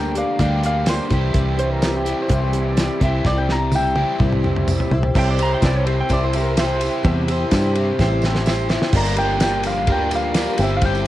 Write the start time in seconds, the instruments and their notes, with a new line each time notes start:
Already playing: fingered electric bass D2, overdriven electric guitar D3 A#3 D4 G4, twelve-string acoustic guitar G3 A#3 D4 G4, tonewheel organ D4 G4 A#4 D5, mandolin A#4 G5
0.15 twelve-string acoustic guitar A#3 D4 G4, mandolin D5 F5, closed hi-hat
0.39 fingered electric bass D2, twelve-string acoustic guitar D3 G3 A#3 D4 G4, mandolin D5 F5, kick, closed hi-hat
0.63 twelve-string acoustic guitar A#3 D4 G4, mandolin D5 F5, closed hi-hat
0.86 twelve-string acoustic guitar G3 A#3 D4 G4, mandolin C5, snare, closed hi-hat, tambourine
1.09 fingered electric bass C2, overdriven electric guitar C3 E3 G3, twelve-string acoustic guitar C4 E4 G4, tonewheel organ E4 G4 C5 E5, kick, closed hi-hat
1.34 fingered electric bass C2, twelve-string acoustic guitar C3 G3 C4 E4 G4, kick, closed hi-hat
1.57 twelve-string acoustic guitar C4 E4 G4, pedal steel guitar C5, closed hi-hat
1.72 pedal steel guitar A#4
1.81 twelve-string acoustic guitar G3 C4 E4 G4, snare, closed hi-hat, tambourine
1.97 pedal steel guitar G4
2.05 overdriven electric guitar C3 E3 G3, twelve-string acoustic guitar C4 E4 G4, closed hi-hat
2.22 pedal steel guitar C5
2.28 fingered electric bass C2, twelve-string acoustic guitar C3 G3 C4 E4 G4, kick, closed hi-hat
2.53 twelve-string acoustic guitar C4 E4 G4, closed hi-hat
2.69 pedal steel guitar D5
2.76 twelve-string acoustic guitar G3 C4 E4 G4, snare, closed hi-hat, tambourine
3.00 fingered electric bass C2, overdriven electric guitar C3 E3 G3, twelve-string acoustic guitar C4 E4 G4, kick, closed hi-hat
3.05 pedal steel guitar E5
3.25 fingered electric bass C2, twelve-string acoustic guitar C3 G3 C4 E4 G4, mandolin D5, kick, snare
3.38 mandolin G5
3.49 twelve-string acoustic guitar C4 E4 G4, mandolin A#5, snare
3.72 twelve-string acoustic guitar G3 C4 E4 G4, mandolin E5 G5, high tom, tambourine
3.96 overdriven electric guitar C3 E3 G3, twelve-string acoustic guitar C4 E4 G4, high tom
4.19 fingered electric bass C2, twelve-string acoustic guitar C3 G3 C4 E4 G4, kick, mid tom
4.33 mid tom
4.43 twelve-string acoustic guitar C4 E4 G4, mid tom
4.56 mid tom
4.67 twelve-string acoustic guitar G3 C4 E4 G4, mid tom, tambourine
4.80 floor tom
4.91 fingered electric bass C2, twelve-string acoustic guitar C4 E4 G4, floor tom
5.03 floor tom
5.14 fingered electric bass C2, twelve-string acoustic guitar C3 G3 C4 E4 G4, tonewheel organ E4 G4 C5 E5, grand piano G4 C5 E5, kick, crash
5.19 pedal steel guitar G5
5.30 pedal steel guitar D5
5.38 twelve-string acoustic guitar C4 E4 G4, overdriven electric guitar C5, ride, tambourine
5.43 pedal steel guitar A#5
5.54 pedal steel guitar G5
5.61 fingered electric bass C2, twelve-string acoustic guitar G3 C4 E4 G4, grand piano G4 C5 E5, pedal steel guitar D5, kick, snare, ride, tambourine
5.76 pedal steel guitar C#5
5.86 twelve-string acoustic guitar C4 E4 G4, pedal steel guitar C5, ride
6.00 pedal steel guitar G5
6.09 fingered electric bass C2, twelve-string acoustic guitar C3 G3 C4 E4 G4, grand piano G4 C5 E5, overdriven electric guitar C5, kick, ride, tambourine
6.13 pedal steel guitar D5
6.24 pedal steel guitar C5
6.33 twelve-string acoustic guitar C4 E4 G4, grand piano G4 C5 E5, pedal steel guitar A#4, ride, tambourine
6.56 twelve-string acoustic guitar G3 C4 E4 G4, grand piano G4 C5 E5, overdriven electric guitar C5, snare, ride, tambourine
6.60 pedal steel guitar C5
6.80 twelve-string acoustic guitar C4 E4 G4, ride, tambourine
7.03 fingered electric bass E2, twelve-string acoustic guitar C3 G3 C4 E4 G4, grand piano G4 C5 E5, kick, ride
7.07 overdriven electric guitar C3
7.28 twelve-string acoustic guitar C4 E4 G4, overdriven electric guitar C5, ride, tambourine
7.51 fingered electric bass G2, twelve-string acoustic guitar G3 C4 E4 G4, grand piano G4 C5 D5, kick, snare, ride, tambourine
7.75 twelve-string acoustic guitar C4 E4 G4, ride
7.99 fingered electric bass A1, twelve-string acoustic guitar C3 G3 C4 E4 G4, grand piano G4 C5 E5, overdriven electric guitar C5, kick, snare, tambourine
8.22 grand piano G4 C5 G5, twelve-string acoustic guitar G4, snare, tambourine
8.26 twelve-string acoustic guitar C4 E4
8.35 snare
8.45 twelve-string acoustic guitar G3 C4 E4 G4, grand piano G4 C5 E5, overdriven electric guitar C5, snare, tambourine
8.69 twelve-string acoustic guitar C4 E4 G4, snare, tambourine
8.82 snare
8.92 fingered electric bass G1, twelve-string acoustic guitar G2 D3 F3 A#3 D4 G4, overdriven electric guitar G3, grand piano F4 G4 A#4 D5, tonewheel organ F4 G4 A#4 D5, kick, crash, tambourine
8.97 overdriven electric guitar A#4, mandolin A#5
9.05 tambourine
9.16 twelve-string acoustic guitar F3 A#3 D4 G4, overdriven electric guitar A#4, mandolin G5, ride, tambourine
9.21 overdriven electric guitar G3
9.39 twelve-string acoustic guitar F3 A#3 D4 G4, overdriven electric guitar G3, grand piano F4 G4 A#4 D5, mandolin G5, snare, ride, tambourine
9.44 overdriven electric guitar A#4
9.63 twelve-string acoustic guitar F3 A#3 D4 G4, mandolin F5, ride, tambourine
9.86 fingered electric bass D2, twelve-string acoustic guitar G2 D3 F3 A#3 D4 G4, overdriven electric guitar G3 A#4, grand piano F4 G4 A#4 D5, kick, ride
9.92 mandolin G5
10.10 twelve-string acoustic guitar F3 A#3 D4 G4, overdriven electric guitar G3 A#4, ride, tambourine
10.15 mandolin F5
10.34 twelve-string acoustic guitar F3 A#3 D4 G4, overdriven electric guitar G3, grand piano F4 G4 A#4 D5, snare, ride, tambourine
10.39 overdriven electric guitar A#4
10.58 fingered electric bass G1, tonewheel organ C4 E4 G4 C5, grand piano E4 G4 C5 E5, twelve-string acoustic guitar E4 G4, ride, tambourine
10.62 overdriven electric guitar G3, twelve-string acoustic guitar C4, mandolin E5
10.77 mandolin F5
10.82 twelve-string acoustic guitar G3 C4, mandolin G5, kick, ride, tambourine
10.86 twelve-string acoustic guitar E4 G4
10.95 tambourine